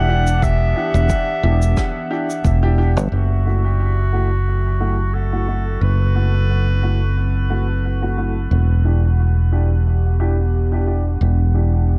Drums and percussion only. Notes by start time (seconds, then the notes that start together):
0.27 shaker
0.42 kick, shaker
0.95 shaker
1.09 kick, shaker
1.62 shaker
1.77 kick, cross-stick, shaker
2.30 shaker
2.45 kick, shaker
2.97 shaker